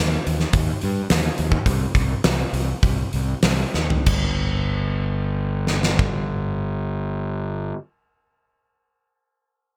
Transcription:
0.00 D#2
0.27 D#2, open hi-hat
0.40 snare
0.53 D#2, kick, open hi-hat
0.81 G2, open hi-hat
1.10 D#2, snare, open hi-hat
1.38 D#2, open hi-hat
1.52 kick
1.66 C2, kick, open hi-hat
1.95 C2, kick, open hi-hat
2.24 C2, snare, open hi-hat
2.53 C2, open hi-hat
2.83 C2, kick, open hi-hat
3.13 C2, open hi-hat
3.43 C2, snare, open hi-hat
3.74 D#2, snare
3.90 floor tom
4.06 G1, kick, crash
5.67 snare
5.83 snare
5.99 kick

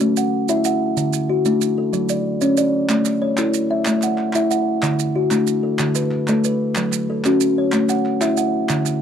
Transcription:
0.00 A3, maracas
0.17 F#5, maracas
0.49 E4 E5, maracas
0.64 F#5, maracas
0.97 D3, maracas
1.13 maracas
1.29 F#4
1.45 A3 D4, maracas
1.61 maracas
1.78 A4
1.93 F#3, maracas
2.09 D5, maracas
2.41 C#4 C#5, maracas
2.57 D5, maracas
2.89 A3, clap, maracas
3.05 clap, maracas
3.22 C#5
3.37 E4 A4, clap, maracas
3.54 maracas
3.71 E5
3.85 A3, clap, maracas
4.02 F#5, clap, maracas
4.18 clap
4.33 E4 E5, clap, maracas
4.51 F#5, maracas
4.82 D3, clap, maracas
4.99 maracas
5.16 F#4
5.31 A3 D4, clap, maracas
5.47 maracas
5.63 A4
5.79 D3, clap, maracas
5.95 B4, clap, maracas
6.11 clap
6.28 A3 A4, clap, maracas
6.44 B4, maracas
6.75 F#3, clap, maracas
6.92 clap, maracas
7.10 A4
7.24 C#4 F#4, clap, maracas
7.41 maracas
7.58 C#5
7.72 A3, clap, maracas
7.89 F#5, clap, maracas
8.06 clap
8.21 E4 E5, clap, maracas
8.37 F#5, maracas
8.69 D3, clap, maracas
8.86 clap, maracas

